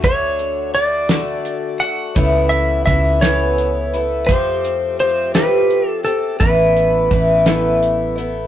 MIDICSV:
0, 0, Header, 1, 5, 480
1, 0, Start_track
1, 0, Tempo, 708048
1, 22, Time_signature, 6, 3, 24, 8
1, 5743, End_track
2, 0, Start_track
2, 0, Title_t, "Electric slide guitar"
2, 0, Program_c, 0, 29
2, 28, Note_on_c, 0, 73, 82
2, 502, Note_off_c, 0, 73, 0
2, 505, Note_on_c, 0, 74, 89
2, 1220, Note_on_c, 0, 78, 85
2, 1245, Note_off_c, 0, 74, 0
2, 1674, Note_off_c, 0, 78, 0
2, 1690, Note_on_c, 0, 76, 85
2, 1919, Note_off_c, 0, 76, 0
2, 1936, Note_on_c, 0, 76, 90
2, 2178, Note_on_c, 0, 73, 82
2, 2186, Note_off_c, 0, 76, 0
2, 2693, Note_off_c, 0, 73, 0
2, 2892, Note_on_c, 0, 72, 82
2, 3382, Note_off_c, 0, 72, 0
2, 3390, Note_on_c, 0, 72, 81
2, 3624, Note_off_c, 0, 72, 0
2, 3626, Note_on_c, 0, 71, 74
2, 3993, Note_off_c, 0, 71, 0
2, 3993, Note_on_c, 0, 69, 74
2, 4096, Note_off_c, 0, 69, 0
2, 4098, Note_on_c, 0, 69, 74
2, 4335, Note_off_c, 0, 69, 0
2, 4338, Note_on_c, 0, 71, 77
2, 5272, Note_off_c, 0, 71, 0
2, 5743, End_track
3, 0, Start_track
3, 0, Title_t, "Twelve-string acoustic guitar"
3, 0, Program_c, 1, 25
3, 29, Note_on_c, 1, 50, 66
3, 34, Note_on_c, 1, 57, 70
3, 39, Note_on_c, 1, 62, 70
3, 40, Note_on_c, 1, 66, 69
3, 488, Note_off_c, 1, 50, 0
3, 497, Note_on_c, 1, 50, 55
3, 504, Note_off_c, 1, 57, 0
3, 505, Note_off_c, 1, 62, 0
3, 506, Note_on_c, 1, 57, 53
3, 507, Note_off_c, 1, 66, 0
3, 513, Note_on_c, 1, 62, 60
3, 516, Note_on_c, 1, 66, 64
3, 730, Note_off_c, 1, 66, 0
3, 736, Note_off_c, 1, 62, 0
3, 738, Note_on_c, 1, 66, 59
3, 739, Note_off_c, 1, 50, 0
3, 740, Note_off_c, 1, 57, 0
3, 744, Note_on_c, 1, 62, 54
3, 748, Note_on_c, 1, 57, 57
3, 749, Note_on_c, 1, 50, 51
3, 1214, Note_off_c, 1, 66, 0
3, 1222, Note_on_c, 1, 66, 55
3, 1223, Note_off_c, 1, 62, 0
3, 1225, Note_off_c, 1, 50, 0
3, 1232, Note_on_c, 1, 62, 40
3, 1239, Note_off_c, 1, 57, 0
3, 1242, Note_on_c, 1, 57, 44
3, 1454, Note_on_c, 1, 49, 67
3, 1455, Note_off_c, 1, 57, 0
3, 1462, Note_off_c, 1, 66, 0
3, 1462, Note_on_c, 1, 52, 68
3, 1463, Note_on_c, 1, 57, 72
3, 1466, Note_off_c, 1, 62, 0
3, 1468, Note_on_c, 1, 64, 85
3, 1469, Note_on_c, 1, 59, 80
3, 1938, Note_off_c, 1, 49, 0
3, 1942, Note_off_c, 1, 52, 0
3, 1945, Note_off_c, 1, 59, 0
3, 1945, Note_off_c, 1, 64, 0
3, 1952, Note_on_c, 1, 52, 50
3, 1953, Note_off_c, 1, 57, 0
3, 1955, Note_on_c, 1, 57, 51
3, 1964, Note_on_c, 1, 59, 62
3, 1970, Note_on_c, 1, 64, 59
3, 2186, Note_off_c, 1, 64, 0
3, 2187, Note_off_c, 1, 52, 0
3, 2189, Note_off_c, 1, 57, 0
3, 2191, Note_off_c, 1, 59, 0
3, 2194, Note_on_c, 1, 64, 57
3, 2199, Note_on_c, 1, 59, 66
3, 2200, Note_on_c, 1, 57, 53
3, 2203, Note_on_c, 1, 52, 55
3, 2204, Note_on_c, 1, 49, 44
3, 2663, Note_off_c, 1, 64, 0
3, 2670, Note_off_c, 1, 59, 0
3, 2671, Note_on_c, 1, 64, 49
3, 2672, Note_off_c, 1, 52, 0
3, 2673, Note_off_c, 1, 49, 0
3, 2680, Note_on_c, 1, 59, 47
3, 2686, Note_off_c, 1, 57, 0
3, 2689, Note_on_c, 1, 57, 44
3, 2906, Note_off_c, 1, 64, 0
3, 2909, Note_off_c, 1, 57, 0
3, 2911, Note_off_c, 1, 59, 0
3, 2911, Note_on_c, 1, 53, 77
3, 2917, Note_on_c, 1, 57, 75
3, 2920, Note_on_c, 1, 60, 77
3, 2926, Note_on_c, 1, 67, 82
3, 3377, Note_off_c, 1, 53, 0
3, 3385, Note_on_c, 1, 53, 56
3, 3388, Note_off_c, 1, 57, 0
3, 3391, Note_off_c, 1, 60, 0
3, 3391, Note_on_c, 1, 57, 53
3, 3394, Note_off_c, 1, 67, 0
3, 3398, Note_on_c, 1, 60, 50
3, 3404, Note_on_c, 1, 67, 54
3, 3613, Note_off_c, 1, 67, 0
3, 3621, Note_on_c, 1, 67, 66
3, 3623, Note_off_c, 1, 53, 0
3, 3625, Note_off_c, 1, 60, 0
3, 3626, Note_off_c, 1, 57, 0
3, 3634, Note_on_c, 1, 57, 59
3, 3634, Note_on_c, 1, 60, 60
3, 3636, Note_on_c, 1, 53, 44
3, 4096, Note_off_c, 1, 67, 0
3, 4103, Note_off_c, 1, 60, 0
3, 4104, Note_on_c, 1, 67, 51
3, 4109, Note_off_c, 1, 53, 0
3, 4111, Note_on_c, 1, 60, 51
3, 4118, Note_off_c, 1, 57, 0
3, 4120, Note_on_c, 1, 57, 43
3, 4337, Note_off_c, 1, 57, 0
3, 4340, Note_on_c, 1, 52, 70
3, 4341, Note_on_c, 1, 45, 63
3, 4343, Note_off_c, 1, 67, 0
3, 4345, Note_on_c, 1, 57, 70
3, 4346, Note_off_c, 1, 60, 0
3, 4351, Note_on_c, 1, 59, 73
3, 4353, Note_on_c, 1, 64, 75
3, 4806, Note_off_c, 1, 52, 0
3, 4814, Note_on_c, 1, 52, 51
3, 4816, Note_off_c, 1, 57, 0
3, 4821, Note_off_c, 1, 45, 0
3, 4822, Note_off_c, 1, 59, 0
3, 4824, Note_off_c, 1, 64, 0
3, 4824, Note_on_c, 1, 57, 50
3, 4830, Note_on_c, 1, 59, 61
3, 4833, Note_on_c, 1, 64, 58
3, 5048, Note_off_c, 1, 64, 0
3, 5052, Note_off_c, 1, 57, 0
3, 5052, Note_off_c, 1, 59, 0
3, 5056, Note_on_c, 1, 64, 69
3, 5058, Note_off_c, 1, 52, 0
3, 5060, Note_on_c, 1, 57, 54
3, 5060, Note_on_c, 1, 59, 61
3, 5067, Note_on_c, 1, 52, 54
3, 5069, Note_on_c, 1, 45, 53
3, 5520, Note_off_c, 1, 64, 0
3, 5529, Note_on_c, 1, 64, 54
3, 5533, Note_off_c, 1, 59, 0
3, 5541, Note_off_c, 1, 57, 0
3, 5541, Note_on_c, 1, 59, 57
3, 5544, Note_off_c, 1, 52, 0
3, 5545, Note_off_c, 1, 45, 0
3, 5548, Note_on_c, 1, 57, 42
3, 5743, Note_off_c, 1, 57, 0
3, 5743, Note_off_c, 1, 59, 0
3, 5743, Note_off_c, 1, 64, 0
3, 5743, End_track
4, 0, Start_track
4, 0, Title_t, "Fingered electric bass"
4, 0, Program_c, 2, 33
4, 28, Note_on_c, 2, 38, 93
4, 958, Note_off_c, 2, 38, 0
4, 1468, Note_on_c, 2, 37, 80
4, 1918, Note_off_c, 2, 37, 0
4, 1947, Note_on_c, 2, 37, 86
4, 2909, Note_off_c, 2, 37, 0
4, 2909, Note_on_c, 2, 41, 87
4, 3838, Note_off_c, 2, 41, 0
4, 4344, Note_on_c, 2, 33, 89
4, 4796, Note_off_c, 2, 33, 0
4, 4824, Note_on_c, 2, 33, 91
4, 5743, Note_off_c, 2, 33, 0
4, 5743, End_track
5, 0, Start_track
5, 0, Title_t, "Drums"
5, 26, Note_on_c, 9, 36, 91
5, 28, Note_on_c, 9, 42, 71
5, 93, Note_off_c, 9, 36, 0
5, 96, Note_off_c, 9, 42, 0
5, 264, Note_on_c, 9, 42, 48
5, 332, Note_off_c, 9, 42, 0
5, 506, Note_on_c, 9, 42, 59
5, 574, Note_off_c, 9, 42, 0
5, 739, Note_on_c, 9, 42, 78
5, 741, Note_on_c, 9, 38, 98
5, 807, Note_off_c, 9, 42, 0
5, 808, Note_off_c, 9, 38, 0
5, 983, Note_on_c, 9, 42, 49
5, 1051, Note_off_c, 9, 42, 0
5, 1223, Note_on_c, 9, 42, 55
5, 1291, Note_off_c, 9, 42, 0
5, 1463, Note_on_c, 9, 42, 62
5, 1465, Note_on_c, 9, 36, 84
5, 1531, Note_off_c, 9, 42, 0
5, 1533, Note_off_c, 9, 36, 0
5, 1704, Note_on_c, 9, 42, 49
5, 1772, Note_off_c, 9, 42, 0
5, 1947, Note_on_c, 9, 36, 72
5, 1948, Note_on_c, 9, 42, 51
5, 2014, Note_off_c, 9, 36, 0
5, 2016, Note_off_c, 9, 42, 0
5, 2184, Note_on_c, 9, 42, 82
5, 2186, Note_on_c, 9, 38, 90
5, 2252, Note_off_c, 9, 42, 0
5, 2254, Note_off_c, 9, 38, 0
5, 2428, Note_on_c, 9, 42, 54
5, 2496, Note_off_c, 9, 42, 0
5, 2668, Note_on_c, 9, 42, 50
5, 2736, Note_off_c, 9, 42, 0
5, 2907, Note_on_c, 9, 36, 92
5, 2910, Note_on_c, 9, 42, 74
5, 2975, Note_off_c, 9, 36, 0
5, 2977, Note_off_c, 9, 42, 0
5, 3149, Note_on_c, 9, 42, 51
5, 3217, Note_off_c, 9, 42, 0
5, 3387, Note_on_c, 9, 42, 50
5, 3455, Note_off_c, 9, 42, 0
5, 3625, Note_on_c, 9, 42, 78
5, 3626, Note_on_c, 9, 38, 93
5, 3692, Note_off_c, 9, 42, 0
5, 3694, Note_off_c, 9, 38, 0
5, 3866, Note_on_c, 9, 42, 44
5, 3934, Note_off_c, 9, 42, 0
5, 4107, Note_on_c, 9, 42, 55
5, 4175, Note_off_c, 9, 42, 0
5, 4343, Note_on_c, 9, 36, 90
5, 4344, Note_on_c, 9, 42, 60
5, 4410, Note_off_c, 9, 36, 0
5, 4412, Note_off_c, 9, 42, 0
5, 4586, Note_on_c, 9, 42, 47
5, 4654, Note_off_c, 9, 42, 0
5, 4820, Note_on_c, 9, 36, 69
5, 4821, Note_on_c, 9, 42, 51
5, 4888, Note_off_c, 9, 36, 0
5, 4889, Note_off_c, 9, 42, 0
5, 5057, Note_on_c, 9, 42, 79
5, 5058, Note_on_c, 9, 38, 92
5, 5125, Note_off_c, 9, 42, 0
5, 5126, Note_off_c, 9, 38, 0
5, 5305, Note_on_c, 9, 42, 56
5, 5372, Note_off_c, 9, 42, 0
5, 5545, Note_on_c, 9, 42, 55
5, 5612, Note_off_c, 9, 42, 0
5, 5743, End_track
0, 0, End_of_file